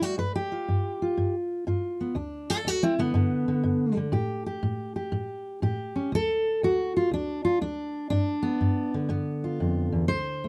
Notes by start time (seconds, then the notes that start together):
Already playing: A2
0.01 G3 F#4
0.18 G2 B4
0.35 G4
0.52 F4
0.68 G2
1.02 F4
1.17 G2
1.67 G2 F4
2.01 B3
2.15 D2 D4
2.50 F4 A4
2.65 D2 F#4
2.83 C4 E4
2.99 D3 B3
3.14 G2 D3
3.48 D3
3.63 G2
3.97 D3
4.12 A2 G4
4.46 G4
4.63 A2
4.96 G4
5.12 A2
5.62 A2 G4
5.96 C#4
6.12 D2 A4
6.63 D2 F#4
6.97 F4
7.11 D2 D4
7.45 F4
7.61 D2 D4
8.10 G2 D4
8.43 B3
8.61 G2
8.94 D3
9.09 G2 B3
9.44 F4
9.60 F2
9.92 E2
10.08 D2 C5
10.44 A3